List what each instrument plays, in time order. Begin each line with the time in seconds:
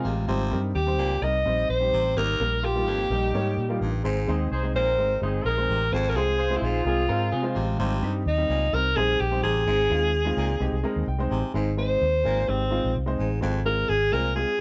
Already playing: upright piano G#3 C4 F4 A#4
0.04 fingered electric bass A1, baritone saxophone C3, clean electric guitar G#3 F4
0.27 fingered electric bass G#1, baritone saxophone C3, upright piano G3 C4 D#4 C5
0.51 fingered electric bass G2, upright piano G3 C4 D#4 A#4
0.75 fingered electric bass D#2, alto saxophone G4
0.86 upright piano G3 C4 D#4 C5
0.98 fingered electric bass C#2, baritone saxophone A#2
1.22 fingered electric bass C2, upright piano G3 C4 D#4 A#4, alto saxophone D#5
1.46 fingered electric bass A#1, upright piano G3 C4 D#4 C5
1.69 fingered electric bass A#1, alto saxophone C5
1.80 upright piano G3 C4 D#4 G4
1.93 fingered electric bass A1, baritone saxophone C3
2.16 fingered electric bass G#1, baritone saxophone D#2, upright piano G3 A#3 D#4 A#4, alto saxophone A#4
2.40 fingered electric bass A#1, upright piano G3 A#3 D#4 A#4
2.63 clean electric guitar F4, alto saxophone G4
2.76 upright piano G3 A#3 D#4 F4
2.86 fingered electric bass G#1, baritone saxophone F2, clean electric guitar A#3 G4
3.10 fingered electric bass A#1, upright piano G3 A#3 D#4 A#4, clean electric guitar G3 D#4
3.34 fingered electric bass G#2, upright piano G3 A#3 D#4 C#5
3.57 fingered electric bass A#2
3.69 upright piano G3 A#3 D#4 F4
3.81 fingered electric bass A1, baritone saxophone G2
4.04 fingered electric bass G#1, baritone saxophone G#2, upright piano G#3 C4 D#4 C5
4.27 fingered electric bass D#2, upright piano G#3 C4 D#4 C5, horn section C4 D#4 G#4
4.51 fingered electric bass C2, horn section D#4 G#4 C5
4.63 upright piano G#3 C4 D#4 C5
4.74 fingered electric bass A#1, baritone saxophone A#2, horn section C4 D#4 A#4, alto saxophone C5
4.98 fingered electric bass G#1, upright piano G#3 C4 D#4 C5
5.21 fingered electric bass G1, upright piano G#3 C4 D#4 C5, horn section C4 D#4 G#4
5.45 fingered electric bass A#1, alto saxophone A#4
5.57 upright piano G#3 C4 D#4 C5
5.69 fingered electric bass A1, baritone saxophone C3
5.92 fingered electric bass G#1, baritone saxophone F2, upright piano G#3 C4 F4 C5, alto saxophone C5
6.09 alto saxophone A#4
6.16 fingered electric bass C2, upright piano G#3 C4 F4 C5, horn section F4 G#4 C5, alto saxophone G#4
6.37 horn section F4 G#4 C5
6.50 upright piano G#3 C4 F4 C5
6.57 alto saxophone E4
6.62 fingered electric bass A#1, baritone saxophone G#2, alto saxophone F4
6.85 fingered electric bass C2, upright piano G#3 C4 F4 A#4, horn section C4 F4 G#4
7.08 fingered electric bass G#2, upright piano G#3 C4 F4 C5, horn section G#3 C4 F4, clean electric guitar A#4
7.32 fingered electric bass C3, clean electric guitar C4 G#4
7.42 upright piano G#3 C4 F4 C5
7.55 fingered electric bass A1, baritone saxophone C3, clean electric guitar G#3 F4
7.79 fingered electric bass G#1, baritone saxophone C3, upright piano G3 C4 D#4 C5
8.02 fingered electric bass G2, upright piano G3 C4 D#4 G4
8.26 fingered electric bass D#2, alto saxophone D#4
8.38 upright piano G3 C4 D#4 G4
8.49 fingered electric bass C#2, baritone saxophone A#2
8.73 fingered electric bass C2, upright piano G3 C4 D#4 C5, alto saxophone A#4
8.96 fingered electric bass A#1, upright piano G3 C4 D#4 C5, alto saxophone G#4
9.20 fingered electric bass A#1, alto saxophone G4
9.31 upright piano G3 C4 D#4 C5
9.43 fingered electric bass A1, baritone saxophone C3, alto saxophone G#4
9.66 fingered electric bass G#1, baritone saxophone G#2, upright piano G#3 C4 D#4 C5
9.90 fingered electric bass D#2, upright piano G#3 C4 D#4 F4
10.25 upright piano G#3 C4 D#4 F4
10.37 fingered electric bass C#2, baritone saxophone A#2
10.60 fingered electric bass C2, upright piano G#3 C4 D#4 G4
10.72 fingered electric bass C2
10.84 upright piano G#3 C4 D#4 A#4 D#5
10.96 fingered electric bass D#2
11.07 fingered electric bass C2, upright piano G5
11.19 upright piano G#3 C4 D#4 C5
11.31 fingered electric bass A1, baritone saxophone C3, upright piano G#5
11.54 fingered electric bass G#1, baritone saxophone G#2, upright piano G#3 C4 D#4 C5
11.77 upright piano G#3 C4 D#4 C5, alto saxophone C5
12.02 fingered electric bass D#2
12.24 fingered electric bass G#1, baritone saxophone A#2, upright piano G#3 C4 D#4 A#4
12.47 fingered electric bass G#1, upright piano G#3 C4 D#4 G4, alto saxophone C4
12.71 upright piano G#3 C4 D#4 F4
12.84 fingered electric bass A#1
12.96 fingered electric bass C2
13.06 upright piano G#3 C4 D#4 C5
13.19 fingered electric bass A1, baritone saxophone G#2
13.41 fingered electric bass G#1, baritone saxophone F2, upright piano G#3 C4 F4 C5
13.65 upright piano G#3 C4 F4 G#4, alto saxophone A#4
13.89 fingered electric bass G#1, alto saxophone G#4
14.12 fingered electric bass C2, baritone saxophone A#2, upright piano G#3 C4 F4 C5, alto saxophone A#4
14.35 upright piano G#3 C4 F4 G#4, alto saxophone G#4